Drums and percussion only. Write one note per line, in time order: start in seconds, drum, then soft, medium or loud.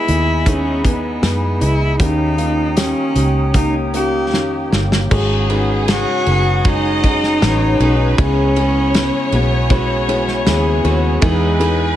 0.08 closed hi-hat medium
0.46 kick medium
0.46 closed hi-hat medium
0.85 kick medium
0.85 closed hi-hat medium
1.23 snare loud
1.23 closed hi-hat medium
1.61 closed hi-hat medium
2.00 kick loud
2.00 closed hi-hat medium
2.38 closed hi-hat medium
2.77 snare loud
2.77 closed hi-hat medium
3.16 closed hi-hat medium
3.54 kick medium
3.54 closed hi-hat medium
3.94 closed hi-hat medium
4.33 snare medium
4.72 snare medium
4.92 snare medium
5.11 kick loud
5.11 crash loud
5.50 ride medium
5.88 snare loud
5.88 ride medium
6.26 ride medium
6.65 kick loud
6.65 ride medium
7.04 kick medium
7.04 ride medium
7.23 snare soft
7.42 snare loud
7.42 ride medium
7.80 ride medium
8.18 kick loud
8.18 ride medium
8.56 ride medium
8.94 snare loud
8.94 ride medium
9.32 ride medium
9.70 kick loud
9.70 ride medium
10.09 ride medium
10.28 snare soft
10.47 snare loud
10.47 ride medium
10.85 ride medium
11.22 kick loud
11.22 ride medium
11.60 ride medium